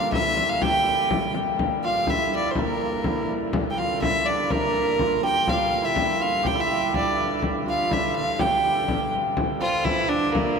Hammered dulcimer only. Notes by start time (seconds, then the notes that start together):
Already playing: A#3 C4 D4 F4 G4
0.15 E4
0.64 G4
1.84 F4
2.09 E4
2.57 A#3
3.07 E4
3.79 F4
4.02 E4
4.28 D4
4.51 A#3
4.99 F4
5.23 G4
5.47 F4
5.82 E4
6.20 F4
6.43 G4
6.55 E4
6.93 D4
7.16 E4
7.66 F4
7.83 F4
7.89 E4
8.39 G4
9.61 F3
9.86 E3
10.09 D3
10.35 A#2